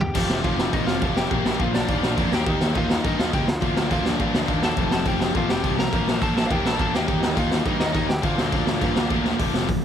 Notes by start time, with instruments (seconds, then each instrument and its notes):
0.01 picked electric bass E2, lead electric guitar G4 G5, floor tom
0.14 picked electric bass F1, overdriven electric guitar F2 C3 F3, kick, crash
0.29 picked electric bass F1, snare
0.43 picked electric bass F1, overdriven electric guitar F2 C3 F3, lead electric guitar F4 F5, kick, crash
0.59 snare
0.72 picked electric bass A#1, overdriven electric guitar F2 C3 F3, lead electric guitar D#4 D#5, kick, crash
0.87 picked electric bass F1, lead electric guitar F4 F5, snare
1.01 picked electric bass F1, overdriven electric guitar F2 C3 F3, kick, crash
1.17 lead electric guitar G4 G5, snare
1.30 picked electric bass A#1, overdriven electric guitar A#2 F3 A#3, kick, crash
1.45 picked electric bass A#1, snare
1.59 picked electric bass A#1, overdriven electric guitar A#2 F3 A#3, lead electric guitar F4 F5, kick, crash
1.74 lead electric guitar D4 D5, snare
1.88 picked electric bass D#2, overdriven electric guitar A#2 F3 A#3, kick, crash
2.03 picked electric bass A#1, snare
2.16 picked electric bass F2, overdriven electric guitar A#2 F3 A#3, kick, crash
2.32 picked electric bass D#2, lead electric guitar G4 G5, snare
2.46 picked electric bass D#2, overdriven electric guitar D#3 A#3 D#4, kick, crash
2.61 picked electric bass D#2, snare
2.74 picked electric bass D#2, overdriven electric guitar D#3 A#3 D#4, lead electric guitar F4 F5, kick, crash
2.90 snare
3.03 picked electric bass G2, overdriven electric guitar D#3 A#3 D#4, lead electric guitar D#4 D#5, kick, crash
3.19 picked electric bass D#2, lead electric guitar F4 F5, snare
3.32 picked electric bass C#2, overdriven electric guitar D#3 A#3 D#4, lead electric guitar G4 G5, kick, crash
3.48 picked electric bass D2, lead electric guitar F4 F5, snare
3.61 picked electric bass D2, overdriven electric guitar A#2 F3 A#3, kick, crash
3.77 picked electric bass D2, snare
3.90 picked electric bass D2, overdriven electric guitar A#2 F3 A#3, lead electric guitar F4 F5, kick, crash
4.05 lead electric guitar D4 D5, snare
4.18 picked electric bass G2, overdriven electric guitar A#2 F3 A#3, kick, crash
4.34 picked electric bass D2, snare
4.47 picked electric bass D#2, overdriven electric guitar A#2 F3 A#3, kick, crash
4.62 lead electric guitar A4 A5, snare
4.77 picked electric bass F1, overdriven electric guitar F2 C3 F3, kick, crash
4.91 picked electric bass F1, lead electric guitar A4 A5, snare
5.05 picked electric bass F1, overdriven electric guitar F2 C3 F3, lead electric guitar G4 G5, kick, crash
5.20 snare
5.34 picked electric bass A#1, overdriven electric guitar F2 C3 F3, lead electric guitar F4 F5, kick, crash
5.49 picked electric bass F1, lead electric guitar G4 G5, snare
5.62 picked electric bass C2, overdriven electric guitar F2 C3 F3, kick, crash
5.79 lead electric guitar A#4 A#5, snare
5.92 picked electric bass A#1, overdriven electric guitar A#2 F3 A#3, kick, crash
6.07 picked electric bass A#1, snare
6.21 picked electric bass A#1, overdriven electric guitar A#2 F3 A#3, lead electric guitar A4 A5, kick, crash
6.37 lead electric guitar A4 A5, snare
6.47 overdriven electric guitar A#2 F3 A#3, lead electric guitar F5, kick
6.51 picked electric bass D#2, lead electric guitar G4 G5, crash
6.65 picked electric bass A#1, lead electric guitar A4 A5, snare
6.78 picked electric bass A#1, overdriven electric guitar A#2 F3 A#3, lead electric guitar A4 A5, kick, crash
6.93 picked electric bass D#2, lead electric guitar G4 G5, snare
7.08 picked electric bass D#2, overdriven electric guitar D#3 A#3 D#4, kick, crash
7.22 picked electric bass D#2, snare
7.35 picked electric bass D#2, overdriven electric guitar D#3 A#3 D#4, lead electric guitar F4 F5, kick, crash
7.51 snare
7.65 picked electric bass G2, overdriven electric guitar D#3 A#3 D#4, lead electric guitar D#4 D#5, kick, crash
7.80 picked electric bass D#2, lead electric guitar D#4 D#5, snare
7.93 picked electric bass D#2, overdriven electric guitar D#3 A#3 D#4, lead electric guitar D#4 D#5, kick, crash
8.09 picked electric bass D2, lead electric guitar G4 G5, snare
8.22 picked electric bass D2, overdriven electric guitar A#2 F3 A#3, lead electric guitar F4 F5, kick, crash
8.38 picked electric bass D2, snare
8.52 picked electric bass D2, overdriven electric guitar A#2 F3 A#3, kick, crash
8.67 snare
8.81 picked electric bass G2, overdriven electric guitar A#2 F3 A#3, kick, crash
8.96 picked electric bass D2, snare
9.10 picked electric bass D2, overdriven electric guitar A#2 F3 A#3, kick, crash
9.25 snare
9.39 picked electric bass F1, overdriven electric guitar F2 C3 F3, kick, open hi-hat
9.54 picked electric bass F1, snare
9.68 picked electric bass F1, overdriven electric guitar F2 C3, kick, open hi-hat